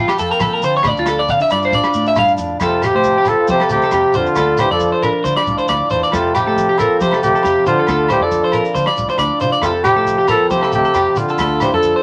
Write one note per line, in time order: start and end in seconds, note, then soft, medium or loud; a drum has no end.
0.00 0.85 F2 medium
0.00 1.49 F3 medium
0.00 0.45 A3 medium
0.00 0.85 C4 medium
0.00 1.50 F4 medium
0.00 2.57 F5 medium
0.00 0.84 G5 medium
0.00 2.58 A5 medium
0.08 0.19 G4 medium
0.08 cross-stick medium
0.08 low agogo medium
0.08 shekere soft
0.18 0.30 F2 medium
0.18 0.31 A4 loud
0.18 closed hi-hat medium
0.18 shekere medium
0.31 0.41 A#4 medium
0.31 shekere soft
0.39 0.64 A#2 medium
0.39 0.61 F3 medium
0.39 0.54 A4 medium
0.39 kick medium
0.39 cross-stick medium
0.39 low agogo medium
0.39 shekere loud
0.54 0.64 A#4 medium
0.62 0.83 D3 medium
0.62 0.75 C5 loud
0.62 closed hi-hat medium
0.62 shekere medium
0.77 0.87 C#5 medium
0.83 0.96 D2 loud
0.83 2.58 D3 medium
0.83 2.60 D5 medium
0.83 kick loud
0.83 cross-stick medium
0.83 low agogo medium
0.83 shekere medium
0.87 0.98 D5 medium
0.97 1.26 D2 medium
0.97 1.08 F4 medium
0.97 shekere soft
1.06 1.19 A4 medium
1.06 cross-stick medium
1.06 closed hi-hat medium
1.06 low agogo medium
1.06 shekere medium
1.19 1.30 D5 medium
1.28 1.40 D3 medium
1.28 1.40 C4 medium
1.28 1.41 F5 medium
1.28 kick medium
1.28 shekere medium
1.40 1.73 D4 medium
1.40 1.51 E5 medium
1.40 shekere soft
1.50 1.71 G2 medium
1.50 2.16 F4 medium
1.50 1.63 D5 loud
1.50 closed hi-hat medium
1.50 low agogo medium
1.50 shekere medium
1.62 1.74 C5 medium
1.62 shekere soft
1.72 2.39 D4 medium
1.72 2.05 D5 medium
1.72 kick medium
1.72 shekere loud
1.84 cross-stick medium
1.84 low agogo medium
1.84 shekere soft
1.93 2.15 A2 medium
1.93 closed hi-hat soft
1.93 shekere medium
2.06 2.17 E5 loud
2.06 shekere soft
2.16 2.37 G2 medium
2.16 2.58 A2 medium
2.16 4.37 F4 medium
2.16 2.31 F5 loud
2.16 kick medium
2.16 cross-stick medium
2.16 low agogo medium
2.16 shekere medium
2.28 shekere soft
2.38 2.58 F2 medium
2.38 2.59 D4 medium
2.38 closed hi-hat medium
2.38 shekere medium
2.60 2.92 F2 loud
2.60 4.37 F2 medium
2.60 2.83 C4 medium
2.60 2.87 F4 medium
2.60 2.83 A4 medium
2.60 12.03 F5 medium
2.60 4.35 G5 medium
2.60 12.03 A5 medium
2.60 kick medium
2.60 cross-stick medium
2.60 low agogo medium
2.60 shekere medium
2.64 2.86 C3 medium
2.82 3.30 C3 medium
2.82 3.28 C4 soft
2.82 2.95 G4 medium
2.82 3.30 G4 loud
2.82 cross-stick medium
2.82 closed hi-hat soft
2.82 low agogo medium
2.82 shekere loud
2.95 3.15 A2 medium
2.95 3.16 C5 medium
3.04 4.80 F3 medium
3.04 kick medium
3.04 shekere medium
3.18 3.27 G4 medium
3.25 3.50 A4 loud
3.25 kick medium
3.25 cross-stick medium
3.25 closed hi-hat soft
3.25 low agogo medium
3.25 shekere medium
3.29 3.50 F3 medium
3.47 3.60 F3 medium
3.47 3.93 C4 medium
3.47 3.70 G4 medium
3.47 3.61 C5 medium
3.47 kick medium
3.47 shekere medium
3.52 3.71 C3 medium
3.60 3.82 A4 medium
3.60 cross-stick medium
3.60 low agogo medium
3.69 3.81 D2 medium
3.69 4.35 C3 medium
3.69 4.18 G4 medium
3.69 closed hi-hat medium
3.69 shekere medium
3.75 4.17 C3 medium
3.81 3.93 A4 medium
3.81 shekere soft
3.91 4.03 F2 medium
3.91 4.14 C4 medium
3.91 4.14 G4 medium
3.91 kick medium
3.91 cross-stick medium
3.91 low agogo medium
3.91 shekere medium
4.13 4.26 E2 medium
4.13 4.61 D3 medium
4.13 4.37 C4 medium
4.13 4.61 F4 medium
4.13 4.26 C5 medium
4.13 closed hi-hat medium
4.13 shekere loud
4.26 muted clean electric guitar stroke medium
4.26 shekere soft
4.36 4.68 D2 medium
4.36 5.69 D3 medium
4.36 5.02 D4 medium
4.36 4.58 A4 medium
4.36 6.11 D5 medium
4.36 kick medium
4.36 cross-stick medium
4.36 low agogo medium
4.36 shekere medium
4.57 4.71 E3 medium
4.57 4.71 G4 medium
4.57 4.71 C5 medium
4.57 cross-stick medium
4.57 closed hi-hat medium
4.57 low agogo medium
4.57 shekere medium
4.71 4.91 F2 loud
4.71 5.12 F3 medium
4.71 5.12 A4 medium
4.71 4.92 D5 medium
4.80 5.90 F3 medium
4.80 kick medium
4.80 shekere medium
4.92 5.02 C5 medium
5.03 6.10 D4 medium
5.03 5.24 A#4 medium
5.03 closed hi-hat soft
5.03 low agogo medium
5.03 shekere medium
5.24 5.36 D3 loud
5.24 8.10 F4 medium
5.24 5.36 C5 medium
5.24 kick medium
5.24 shekere medium
5.36 5.57 D5 medium
5.36 cross-stick medium
5.36 low agogo medium
5.46 5.58 C2 medium
5.46 6.10 A2 medium
5.46 closed hi-hat soft
5.46 shekere medium
5.58 5.68 C5 medium
5.58 shekere soft
5.68 5.80 D2 medium
5.68 5.90 D5 medium
5.68 kick medium
5.68 cross-stick medium
5.68 low agogo medium
5.68 shekere medium
5.90 6.02 E2 medium
5.90 6.13 E3 medium
5.90 6.02 C5 medium
5.90 closed hi-hat soft
5.90 shekere medium
6.03 6.13 D5 medium
6.03 shekere soft
6.12 7.88 F2 medium
6.12 6.44 F2 loud
6.12 6.36 C3 medium
6.12 6.35 C4 medium
6.12 6.36 F4 medium
6.12 6.34 A4 medium
6.12 7.86 G5 medium
6.12 kick medium
6.12 cross-stick medium
6.12 low agogo medium
6.12 shekere medium
6.35 6.81 C3 medium
6.35 6.79 C4 soft
6.35 6.80 G4 loud
6.35 6.46 G4 medium
6.35 cross-stick medium
6.35 closed hi-hat soft
6.35 low agogo medium
6.35 shekere medium
6.46 6.67 A2 medium
6.46 6.68 A4 medium
6.57 8.30 F3 medium
6.57 kick medium
6.57 shekere medium
6.69 6.78 G4 medium
6.78 7.01 F3 medium
6.78 7.01 C4 medium
6.78 6.99 A4 loud
6.78 7.00 A#4 medium
6.78 kick medium
6.78 cross-stick medium
6.78 closed hi-hat soft
6.78 low agogo medium
6.78 shekere medium
7.00 7.22 C3 medium
7.00 7.12 F3 medium
7.00 7.43 C4 medium
7.00 7.20 G4 medium
7.00 7.12 C5 medium
7.00 kick medium
7.00 shekere medium
7.11 7.34 A4 medium
7.11 cross-stick medium
7.11 low agogo medium
7.22 7.33 D2 medium
7.22 7.64 C3 medium
7.22 7.87 C3 medium
7.22 7.63 G4 loud
7.22 closed hi-hat soft
7.22 shekere medium
7.35 7.44 A4 medium
7.35 shekere soft
7.43 7.55 F2 medium
7.43 7.65 C4 medium
7.43 7.65 G4 medium
7.43 kick medium
7.43 cross-stick medium
7.43 low agogo medium
7.43 shekere medium
7.66 7.77 D3 medium
7.66 8.08 D3 medium
7.66 7.88 C4 medium
7.66 8.07 F4 medium
7.66 7.78 C5 medium
7.66 closed hi-hat medium
7.66 shekere medium
7.79 7.88 A4 medium
7.87 8.19 D2 loud
7.87 9.60 D3 medium
7.87 8.52 D4 medium
7.87 8.09 A4 medium
7.87 9.62 D5 medium
7.87 kick medium
7.87 cross-stick medium
7.87 low agogo medium
7.87 shekere medium
8.09 8.23 E3 medium
8.09 8.75 F4 medium
8.09 8.25 G4 medium
8.09 8.21 C5 medium
8.09 cross-stick medium
8.09 closed hi-hat soft
8.09 low agogo medium
8.09 shekere medium
8.20 8.41 F2 loud
8.20 8.65 F3 medium
8.20 8.66 A4 medium
8.20 8.43 D5 medium
8.30 10.07 F3 medium
8.30 kick medium
8.30 shekere medium
8.44 8.54 C5 medium
8.52 8.65 C4 medium
8.52 8.74 A#4 medium
8.52 closed hi-hat soft
8.52 low agogo medium
8.52 shekere medium
8.65 9.18 D4 soft
8.65 shekere soft
8.75 8.87 D3 medium
8.75 9.42 F4 medium
8.75 8.86 C5 medium
8.75 kick medium
8.75 shekere medium
8.86 9.08 D5 medium
8.86 cross-stick medium
8.86 low agogo medium
8.96 9.08 C2 medium
8.96 9.60 A2 medium
8.96 closed hi-hat soft
8.96 shekere medium
9.09 9.18 C5 medium
9.09 shekere soft
9.18 9.30 D2 medium
9.18 9.61 D4 medium
9.18 9.40 D5 medium
9.18 kick medium
9.18 cross-stick medium
9.18 low agogo medium
9.18 shekere medium
9.40 9.52 C3 medium
9.40 11.61 F4 medium
9.40 9.52 C5 medium
9.40 closed hi-hat soft
9.40 shekere medium
9.52 9.62 D5 medium
9.52 shekere soft
9.62 9.93 F2 medium
9.62 11.38 F2 medium
9.62 9.73 C3 medium
9.62 9.85 C4 medium
9.62 9.72 F4 medium
9.62 9.84 A4 medium
9.62 11.37 G5 medium
9.62 kick loud
9.62 cross-stick medium
9.62 low agogo medium
9.62 shekere medium
9.83 10.26 C3 medium
9.83 10.29 C4 soft
9.83 10.25 G4 loud
9.83 9.96 G4 medium
9.83 cross-stick medium
9.83 closed hi-hat soft
9.83 low agogo medium
9.83 shekere loud
9.96 10.17 A2 medium
9.96 10.17 A4 medium
10.07 11.82 F3 medium
10.07 kick medium
10.07 shekere medium
10.18 10.28 G4 medium
10.28 10.49 F3 medium
10.28 10.50 C4 medium
10.28 10.49 A4 loud
10.28 10.49 A#4 medium
10.28 kick medium
10.28 cross-stick medium
10.28 closed hi-hat soft
10.28 low agogo medium
10.28 shekere medium
10.50 10.72 C3 medium
10.50 10.62 F3 medium
10.50 10.95 C4 medium
10.50 10.71 G4 medium
10.50 10.62 C5 medium
10.50 kick medium
10.50 shekere medium
10.61 10.83 A4 medium
10.61 cross-stick medium
10.61 low agogo medium
10.72 10.84 D2 medium
10.72 11.36 C3 medium
10.72 11.19 C3 medium
10.72 11.19 G4 loud
10.72 closed hi-hat soft
10.72 shekere medium
10.85 10.94 A4 medium
10.85 shekere soft
10.94 11.05 F2 medium
10.94 11.17 C4 soft
10.94 11.16 G4 medium
10.94 kick medium
10.94 cross-stick medium
10.94 low agogo medium
10.94 shekere medium
11.16 11.27 D3 medium
11.16 11.64 D3 medium
11.16 11.39 C4 medium
11.16 11.63 F4 medium
11.16 muted clean electric guitar stroke medium
11.16 closed hi-hat soft
11.16 shekere loud
11.29 11.39 A4 medium
11.29 shekere soft
11.38 11.70 D2 loud
11.38 12.03 D3 medium
11.38 12.03 D4 medium
11.38 11.60 A4 medium
11.38 12.03 D5 medium
11.38 kick medium
11.38 cross-stick medium
11.38 low agogo medium
11.38 shekere medium
11.60 11.73 E3 medium
11.60 12.03 F4 medium
11.60 11.73 G4 medium
11.60 11.73 C5 medium
11.60 cross-stick medium
11.60 closed hi-hat medium
11.60 low agogo medium
11.60 shekere medium
11.73 11.93 F2 loud
11.73 12.03 F3 medium
11.73 12.03 A4 medium
11.73 11.94 A4 medium
11.83 12.03 F3 medium
11.83 kick medium
11.83 shekere medium
11.96 12.03 C5 medium